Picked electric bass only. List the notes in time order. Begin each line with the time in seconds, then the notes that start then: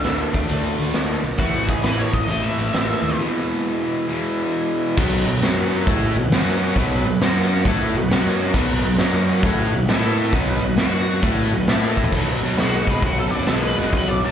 0.05 D2
0.34 D2
0.50 D2
0.80 D2
0.94 D2
1.23 B1
1.38 A1
1.82 A1
2.13 A1
2.26 A1
2.58 A1
2.73 A1
3.02 D#2
4.98 B1
5.27 B1
5.42 F#2
5.87 A2
6.17 B1
6.31 F#2
6.76 B1
7.06 B1
7.21 F#2
7.64 A2
7.95 B1
8.10 F#2
8.54 B1
8.85 B1
8.99 F#2
9.44 A2
9.74 B1
9.89 A2
10.33 B1
10.62 B1
10.77 F#2
11.22 A2
11.52 B1
11.66 A2
12.12 B1
12.41 B1
12.58 B1
12.88 B1
13.02 B1
13.33 F#2
13.48 B1
13.78 F#1
13.93 B1
14.22 B1